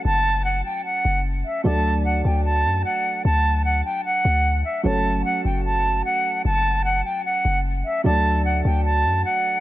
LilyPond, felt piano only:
\new Staff \with { instrumentName = "Felt piano" } { \time 4/4 \key fis \phrygian \tempo 4 = 150 <fis a cis' a' cis''>1 | <fis a d' a' d''>1~ | <fis a d' a' d''>1 | <fis a cis' a' cis''>1~ |
<fis a cis' a' cis''>1 | <fis a d' a' d''>1 | }